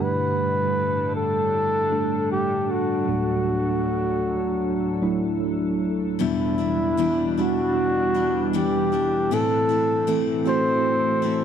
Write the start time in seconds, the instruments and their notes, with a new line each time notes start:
Already playing: ambient pad G3
0.00 tine electric piano G2 D3 G3 A3 D4 G4, ambient pad A2 D4 A4, flugelhorn B4
1.16 flugelhorn A4
1.91 tine electric piano G3 A3 D4 A4
2.32 flugelhorn G4
2.71 flugelhorn F#4
3.07 tine electric piano D2 A2 F#3 A3 D4 F#4, ambient pad A2 F#3
5.02 tine electric piano F#3 A3 D4 E4
6.19 steel-string acoustic guitar E2 B2 E3 G3 D4 E4, tine electric piano E2 B2 G3 B3 D4 E4, ambient pad B2 E3 G3 D4, flugelhorn E4
6.58 steel-string acoustic guitar E3 G3 D4 E4
6.97 steel-string acoustic guitar E2 B2 E3 G3 D4 E4, tine electric piano G3 B3 D4 E4
7.37 steel-string acoustic guitar E3 G3 D4 E4, tine electric piano G3 B3 D4 E4, flugelhorn F#4
8.14 steel-string acoustic guitar E3 G3 D4 E4
8.53 steel-string acoustic guitar E2 B2 E3 G3 D4 E4, flugelhorn G4
8.92 steel-string acoustic guitar E3 G3 D4 E4
9.31 steel-string acoustic guitar A2 E3 A3 C4 E4, ambient pad A2 C4 A4, tine electric piano A2 E3 A3 C4 E4 A4, flugelhorn A4
9.69 steel-string acoustic guitar A3 C4 E4
10.07 steel-string acoustic guitar A2 E3 A3 C4 E4, tine electric piano A3 C4 E4 A4
10.45 tine electric piano A3 C4 E4 F#4, steel-string acoustic guitar A3 C4 E4, flugelhorn C5
11.22 steel-string acoustic guitar A3 C4 E4